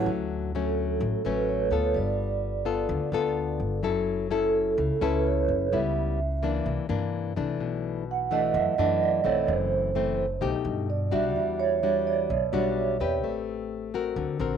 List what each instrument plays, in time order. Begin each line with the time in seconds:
Already playing: nylon-string guitar F#3 A3 C#4
0.06 upright bass D2, nylon-string guitar D3
0.55 nylon-string guitar F#3 A3 C#4, vibraphone A4
1.00 upright bass A1, nylon-string guitar A2
1.25 upright bass A1, nylon-string guitar F#3 A3 C#4, vibraphone B4
1.49 vibraphone C#5
1.70 upright bass D2, nylon-string guitar B3 F4 A4
1.94 upright bass G1, nylon-string guitar G3, vibraphone D5
2.65 nylon-string guitar B3 F4 A4
2.89 upright bass D2, nylon-string guitar D3
3.12 upright bass D2, nylon-string guitar B3 F4 A4
3.60 upright bass G1
3.83 upright bass F#1, nylon-string guitar F#3 C#4 E4 A4
4.31 nylon-string guitar C#4 E4 A4, vibraphone A4
4.78 upright bass C#2, nylon-string guitar C#3
5.01 upright bass C#2, nylon-string guitar C#4 E4 A4, vibraphone B4
5.27 vibraphone C#5
5.48 upright bass F#1
5.72 upright bass C#2, nylon-string guitar C#3 G3 B3 E4, vibraphone E5
6.43 nylon-string guitar E3 A#3 D4
6.66 upright bass C2, nylon-string guitar C3
6.89 upright bass G2, nylon-string guitar E3 A#3 D4
7.36 upright bass C2, nylon-string guitar E3 A3 D4
7.60 upright bass B1, nylon-string guitar B2
8.11 vibraphone F#5
8.31 nylon-string guitar E3 A3 D4, vibraphone D#5
8.54 upright bass F#2, nylon-string guitar F#2, vibraphone E5
8.78 upright bass F#2, nylon-string guitar E3 A3 D4, vibraphone D#5
9.03 vibraphone D5
9.24 upright bass B1, nylon-string guitar E3 A3 C4, vibraphone C#5
9.47 upright bass F#1, nylon-string guitar F#2, vibraphone C5
9.95 nylon-string guitar E3 A3 C4
10.41 upright bass B1, nylon-string guitar B2 A3 D#4 G4
10.65 upright bass G2
10.90 vibraphone D5
11.11 upright bass B1, nylon-string guitar G3 D4 F#4, vibraphone E5
11.35 upright bass E2, nylon-string guitar E3
11.60 vibraphone C#5
11.83 nylon-string guitar G3 D4 F#4
12.07 vibraphone D5
12.30 upright bass B1, nylon-string guitar B2
12.53 upright bass B1, nylon-string guitar G3 D4 F#4
13.00 upright bass E2, nylon-string guitar C4 G4 B4
13.23 upright bass A1, nylon-string guitar A3
13.94 nylon-string guitar C4 F#4 A#4
14.16 upright bass D2, nylon-string guitar D3
14.39 upright bass A#1, nylon-string guitar C4 F#4 A#4